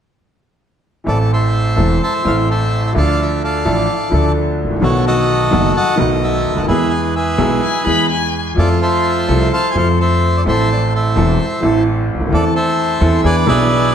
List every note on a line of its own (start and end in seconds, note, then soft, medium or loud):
1.04 1.74 A1 medium
1.04 1.74 A2 medium
1.04 1.73 E3 medium
1.04 1.74 A3 medium
1.04 1.74 C4 medium
1.04 1.75 A4 medium
1.04 1.18 D5 medium
1.08 1.32 A4 medium
1.33 2.22 A4 medium
1.33 2.02 C5 medium
1.33 1.99 E5 medium
1.76 1.97 E1 medium
1.76 1.98 E1 medium
1.76 1.97 E2 medium
1.76 1.97 E3 medium
1.76 1.97 A3 medium
1.76 1.97 C4 medium
1.76 1.97 A4 medium
2.03 2.49 C5 medium
2.03 2.50 E5 medium
2.03 2.14 A5 medium
2.23 2.92 A1 medium
2.23 2.92 A2 medium
2.23 2.91 E3 medium
2.23 2.92 A3 medium
2.23 2.92 C4 medium
2.23 2.93 A4 medium
2.27 2.37 F5 medium
2.50 2.93 A4 soft
2.50 2.93 C5 soft
2.50 2.83 E5 medium
2.87 2.92 E5 medium
2.93 3.62 D2 medium
2.93 3.63 D2 medium
2.93 3.62 D3 medium
2.93 3.61 F3 medium
2.93 3.62 A3 medium
2.93 3.62 D4 medium
2.93 3.42 A4 medium
2.97 3.63 A4 medium
2.97 3.43 D5 medium
2.97 3.21 F5 medium
3.22 3.43 E5 medium
3.44 4.32 A4 soft
3.44 4.32 D5 medium
3.44 4.09 F5 medium
3.65 3.85 A1 medium
3.65 3.85 A2 medium
3.65 3.85 F3 medium
3.65 3.85 A3 medium
3.65 3.85 D4 medium
3.65 3.85 A4 medium
4.10 4.78 D2 medium
4.10 4.64 D2 medium
4.10 4.78 D3 medium
4.10 4.77 F3 medium
4.10 4.78 A3 medium
4.10 4.79 D4 medium
4.14 4.79 A4 medium
4.64 4.70 G#1 soft
4.70 4.76 A1 soft
4.76 4.82 A#1 medium
4.80 5.49 B1 medium
4.80 5.49 B2 medium
4.80 5.48 D#3 medium
4.80 5.48 A3 medium
4.80 5.49 B3 medium
4.80 5.05 F#4 medium
4.80 5.50 F#4 medium
4.80 5.05 A4 medium
4.80 5.05 C#5 medium
5.07 5.95 F#4 medium
5.07 5.96 A4 medium
5.07 5.73 D#5 medium
5.51 5.72 F#1 medium
5.51 5.71 F#2 medium
5.51 5.71 D#3 medium
5.51 5.71 A3 medium
5.51 5.71 B3 medium
5.51 5.72 F#4 medium
5.77 6.65 D#5 medium
5.77 5.99 F#5 medium
5.77 5.98 A5 medium
5.96 6.65 B1 medium
5.96 6.51 B1 medium
5.96 6.64 B2 medium
5.96 6.64 D#3 medium
5.96 6.64 A3 medium
5.96 6.65 B3 medium
5.96 6.66 F#4 medium
6.00 6.10 F#5 medium
6.24 6.66 A4 medium
6.24 6.59 E5 medium
6.50 6.57 C#2 soft
6.57 6.63 D2 soft
6.57 6.62 D2 soft
6.57 6.63 F#5 medium
6.63 6.68 D#2 medium
6.63 6.69 D#2 medium
6.68 7.36 E2 medium
6.68 7.36 E3 medium
6.68 7.35 G#3 medium
6.68 7.36 B3 medium
6.68 7.14 G#4 medium
6.68 7.37 G#4 medium
6.68 7.15 B4 medium
6.68 6.92 E5 medium
6.90 7.01 G#5 medium
7.16 8.07 G#4 soft
7.16 8.07 B4 soft
7.16 7.83 E5 medium
7.38 7.59 B1 medium
7.38 7.59 B2 medium
7.38 7.59 E3 medium
7.38 7.59 G#3 medium
7.38 7.59 B3 medium
7.38 7.59 G#4 medium
7.63 7.85 G#5 medium
7.84 8.54 E2 medium
7.84 8.54 E3 medium
7.84 8.53 G#3 soft
7.84 8.54 B3 soft
7.84 8.55 G#4 medium
7.84 8.09 B5 medium
8.11 8.44 G#5 medium
8.55 9.25 F2 medium
8.55 9.25 F3 medium
8.55 9.24 A3 medium
8.55 9.25 C4 medium
8.55 9.49 F4 medium
8.55 8.80 A4 medium
8.59 9.26 A4 medium
8.59 8.69 D5 medium
8.82 9.72 A4 medium
8.82 9.52 C5 medium
8.82 9.49 E5 medium
9.28 9.48 C2 medium
9.28 9.49 C2 medium
9.28 9.48 C3 medium
9.28 9.48 F3 medium
9.28 9.48 A3 medium
9.28 9.48 C4 medium
9.28 9.49 A4 medium
9.53 9.99 C5 medium
9.53 9.77 F5 medium
9.53 9.70 A5 medium
9.71 9.75 F3 medium
9.71 10.43 A3 medium
9.71 9.76 G#5 medium
9.75 10.43 F2 medium
9.75 10.43 F3 medium
9.75 10.43 C4 medium
9.75 10.44 A4 medium
9.75 9.88 F5 medium
10.00 10.44 A4 soft
10.00 10.44 C5 medium
10.00 10.37 E5 medium
10.37 10.42 D5 medium
10.44 11.13 A1 medium
10.44 11.14 A1 medium
10.44 11.13 A2 medium
10.44 11.12 E3 medium
10.44 11.13 A3 medium
10.44 11.13 C4 medium
10.48 11.14 A4 medium
10.48 10.94 A4 medium
10.48 10.93 C5 medium
10.48 10.70 E5 medium
10.72 10.82 D5 medium
10.95 11.83 A4 medium
10.95 11.83 C5 medium
10.95 11.61 E5 medium
11.16 11.36 E1 medium
11.16 11.37 E1 medium
11.16 11.36 E2 medium
11.16 11.36 E3 medium
11.16 11.36 A3 medium
11.16 11.36 C4 medium
11.16 11.36 A4 medium
11.60 12.29 A1 medium
11.60 12.14 A1 medium
11.60 12.29 A2 medium
11.60 12.28 E3 medium
11.60 12.29 A3 medium
11.60 12.29 C4 medium
11.64 12.30 A4 medium
12.14 12.21 C#2 soft
12.14 12.20 C#2 soft
12.20 12.26 D2 medium
12.20 12.27 D2 medium
12.26 12.32 D#2 medium
12.26 12.31 E3 medium
12.31 12.98 E2 medium
12.31 12.98 E3 medium
12.31 12.98 A3 medium
12.31 12.99 C4 medium
12.31 12.54 A4 medium
12.31 12.99 A4 medium
12.31 12.44 D5 medium
12.55 13.21 A4 soft
12.55 13.21 C5 medium
12.55 13.28 E5 medium
13.01 13.21 E2 medium
13.01 13.21 E3 medium
13.01 13.21 A3 medium
13.01 13.21 C4 medium
13.01 13.21 A4 medium
13.23 13.44 E2 medium
13.23 13.44 E3 medium
13.23 13.44 B3 medium
13.23 13.44 D4 medium
13.23 13.44 G#4 medium
13.23 13.47 B4 medium
13.23 13.95 D5 medium
13.23 13.36 G#5 medium
13.45 13.95 B1 medium
13.45 13.95 B2 medium
13.45 13.95 E3 medium
13.45 13.95 B3 medium
13.45 13.95 D4 medium
13.45 13.95 G#4 medium
13.45 13.95 B4 medium
13.45 13.91 E5 medium